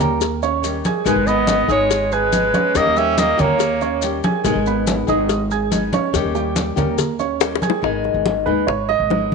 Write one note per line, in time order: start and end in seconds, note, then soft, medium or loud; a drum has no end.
0.00 0.81 D#2 medium
0.00 0.21 G3 medium
0.00 0.35 A#3 medium
0.00 0.20 C#4 medium
0.00 0.20 G4 medium
0.00 0.35 A#4 medium
0.00 0.35 A#5 medium
0.00 cowbell medium
0.00 high conga soft
0.00 low conga medium
0.00 maracas soft
0.21 muted nylon-string guitar stroke medium
0.21 cowbell loud
0.21 high conga soft
0.21 maracas medium
0.43 0.77 C#4 medium
0.43 0.77 C#5 medium
0.43 0.78 C#6 medium
0.43 high conga soft
0.43 maracas soft
0.62 1.03 D#3 soft
0.62 1.05 G3 medium
0.62 1.05 C#4 soft
0.62 1.06 G4 medium
0.62 cowbell medium
0.62 high conga soft
0.62 maracas medium
0.85 1.03 G#4 medium
0.85 1.03 G#5 medium
0.85 1.03 G#6 medium
0.85 cowbell medium
0.85 high conga medium
0.85 maracas soft
1.04 1.15 G#1 medium
1.04 1.68 D#3 medium
1.04 1.68 G#3 medium
1.04 1.24 G#3 medium
1.04 1.29 G#3 medium
1.04 1.68 B3 medium
1.04 1.69 D#4 medium
1.04 1.67 G#4 medium
1.04 1.24 G#4 medium
1.04 1.28 B4 medium
1.04 1.24 G#5 medium
1.04 cowbell medium
1.04 high conga soft
1.04 maracas medium
1.16 1.66 G#1 medium
1.27 1.70 B3 medium
1.27 1.62 B3 medium
1.27 1.62 B4 medium
1.27 1.69 D#5 loud
1.27 1.63 B5 medium
1.27 high conga soft
1.27 maracas soft
1.47 cowbell medium
1.47 high conga loud
1.47 maracas medium
1.68 2.50 G#1 medium
1.68 1.89 G#3 medium
1.68 2.12 G#3 medium
1.68 1.90 B3 medium
1.68 2.04 D#4 medium
1.68 1.90 D#4 medium
1.68 1.89 G#4 medium
1.68 2.14 C#5 loud
1.68 2.04 D#5 medium
1.68 2.04 D#6 medium
1.68 high conga soft
1.68 maracas soft
1.90 muted nylon-string guitar stroke medium
1.90 cowbell loud
1.90 high conga soft
1.90 maracas medium
2.11 2.77 G#3 medium
2.11 2.47 G#4 medium
2.11 2.78 B4 loud
2.11 2.47 G#5 medium
2.11 2.47 G#6 medium
2.11 high conga soft
2.11 maracas soft
2.32 2.74 G#3 soft
2.32 2.74 B3 medium
2.32 2.75 D#4 medium
2.32 2.75 G#4 medium
2.32 cowbell medium
2.32 high conga medium
2.32 maracas medium
2.54 2.89 C#4 medium
2.54 2.89 C#5 medium
2.54 2.89 C#6 medium
2.54 cowbell medium
2.54 high conga medium
2.54 maracas soft
2.74 2.85 D#2 medium
2.74 3.37 D#3 medium
2.74 3.38 G3 medium
2.74 2.99 A#3 medium
2.74 3.38 C#4 medium
2.74 3.36 G4 medium
2.74 2.99 D#5 loud
2.74 cowbell medium
2.74 high conga soft
2.74 maracas medium
2.86 3.36 D#2 medium
2.96 3.31 G3 medium
2.96 3.20 C#4 medium
2.96 3.31 G4 medium
2.96 3.21 E5 loud
2.96 3.31 G5 medium
2.96 high conga soft
2.96 maracas soft
3.18 3.41 A#3 medium
3.18 3.42 D#5 loud
3.18 cowbell medium
3.18 high conga loud
3.18 maracas medium
3.37 4.19 D#2 loud
3.37 3.58 G3 medium
3.37 3.74 A#3 medium
3.37 4.03 A#3 medium
3.37 3.58 C#4 medium
3.37 3.58 G4 medium
3.37 3.74 A#4 medium
3.37 4.03 C#5 loud
3.37 3.74 A#5 medium
3.37 cowbell medium
3.37 high conga soft
3.37 low conga medium
3.37 maracas soft
3.58 muted nylon-string guitar stroke medium
3.58 cowbell loud
3.58 high conga soft
3.58 maracas medium
3.81 4.16 C#4 medium
3.81 4.16 C#5 medium
3.81 4.16 C#6 medium
3.81 high conga soft
3.81 maracas soft
4.01 4.42 D#3 soft
4.01 4.43 G3 medium
4.01 4.44 C#4 medium
4.01 4.44 G4 medium
4.01 cowbell medium
4.01 high conga soft
4.01 maracas medium
4.23 4.41 G#4 medium
4.23 4.41 G#5 medium
4.23 4.41 G#6 medium
4.23 cowbell medium
4.23 high conga medium
4.23 maracas soft
4.44 4.55 G#1 loud
4.44 5.07 D#3 medium
4.44 5.07 G#3 medium
4.44 4.62 G#3 medium
4.44 5.07 B3 medium
4.44 5.07 D#4 medium
4.44 4.62 G#4 medium
4.44 5.06 G#4 medium
4.44 4.63 G#5 medium
4.44 cowbell loud
4.44 high conga soft
4.44 maracas medium
4.55 5.05 G#1 medium
4.66 5.01 B3 medium
4.66 5.01 B4 medium
4.66 5.01 B5 medium
4.66 high conga soft
4.66 maracas soft
4.87 cowbell medium
4.87 high conga loud
4.87 maracas medium
5.07 5.89 G#1 medium
5.07 5.28 G#3 medium
5.07 5.28 B3 medium
5.07 5.28 D#4 medium
5.07 5.43 D#4 medium
5.07 5.28 G#4 medium
5.07 5.43 D#5 medium
5.07 5.43 D#6 medium
5.07 high conga soft
5.07 maracas soft
5.29 muted nylon-string guitar stroke medium
5.29 cowbell loud
5.29 high conga soft
5.29 maracas medium
5.51 5.85 G#4 medium
5.51 5.86 G#5 medium
5.51 5.86 G#6 medium
5.51 high conga soft
5.51 maracas soft
5.70 6.12 G#3 soft
5.70 6.13 B3 medium
5.70 6.13 D#4 medium
5.70 6.14 G#4 medium
5.70 cowbell medium
5.70 high conga medium
5.70 maracas medium
5.93 6.28 C#4 medium
5.93 6.28 C#5 medium
5.93 6.28 C#6 medium
5.93 cowbell medium
5.93 high conga medium
5.93 maracas soft
6.13 6.24 D#2 loud
6.13 6.76 D#3 medium
6.13 6.76 G3 medium
6.13 6.76 C#4 medium
6.13 6.75 G4 medium
6.13 cowbell medium
6.13 high conga soft
6.13 maracas medium
6.24 6.75 D#2 medium
6.35 6.70 G3 medium
6.35 6.70 G4 medium
6.35 6.70 G5 medium
6.35 high conga soft
6.35 maracas soft
6.56 cowbell medium
6.56 high conga loud
6.56 maracas medium
6.76 7.58 D#2 medium
6.76 6.97 G3 medium
6.76 7.12 A#3 medium
6.76 6.97 C#4 medium
6.76 6.97 G4 medium
6.76 7.12 A#4 medium
6.76 7.12 A#5 medium
6.76 cowbell medium
6.76 high conga soft
6.76 low conga medium
6.76 maracas soft
6.98 muted nylon-string guitar stroke medium
6.98 cowbell loud
6.98 high conga soft
6.98 low conga medium
6.98 maracas medium
7.19 7.54 C#4 medium
7.19 7.54 C#5 medium
7.19 7.54 C#6 medium
7.19 high conga soft
7.19 maracas soft
7.40 7.80 D#3 soft
7.40 7.82 G3 soft
7.40 7.83 C#4 medium
7.40 7.83 G4 soft
7.40 cowbell medium
7.40 high bongo loud
7.40 high conga soft
7.40 maracas medium
7.55 high bongo medium
7.62 7.79 G#4 medium
7.62 7.79 G#5 medium
7.62 7.80 G#6 medium
7.62 cowbell medium
7.62 high conga medium
7.62 maracas soft
7.70 low bongo loud
7.82 8.13 G#1 medium
7.82 8.45 D#3 medium
7.82 8.46 G#3 medium
7.82 8.46 B3 medium
7.82 8.46 D#4 medium
7.82 8.45 G#4 medium
7.82 high bongo medium
7.82 high conga soft
8.04 high bongo soft
8.04 high conga soft
8.14 8.48 G#1 medium
8.26 high bongo medium
8.26 high conga medium
8.46 8.67 D#2 medium
8.46 8.66 G#3 medium
8.46 8.67 B3 medium
8.46 8.67 D#4 medium
8.46 8.67 G#4 medium
8.46 8.67 B4 medium
8.46 high bongo soft
8.46 high conga soft
8.67 8.98 G#1 medium
8.67 8.88 C#5 medium
8.67 muted nylon-string guitar stroke medium
8.67 high bongo medium
8.67 high conga soft
8.89 9.35 D#5 loud
8.89 high bongo soft
8.89 high conga soft
9.00 9.30 G#1 medium
9.10 9.35 G#3 soft
9.10 9.35 B3 soft
9.10 9.35 D#4 soft
9.10 9.35 G#4 soft
9.10 high bongo soft
9.10 low bongo medium
9.10 high conga medium
9.31 9.35 C#2 medium